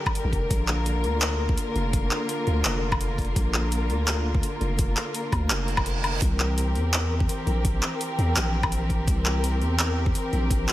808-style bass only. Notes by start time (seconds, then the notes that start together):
0.24 A1
0.33 F1
0.50 A#1
1.04 D2
1.75 F1
2.47 D2
2.65 F1
3.36 A#1
3.90 D2
4.61 F1
5.32 D2
5.50 F1
6.22 C2
6.76 E2
7.47 A#1
8.18 E2
8.36 A#1
9.08 C2
9.61 E2
10.33 A#1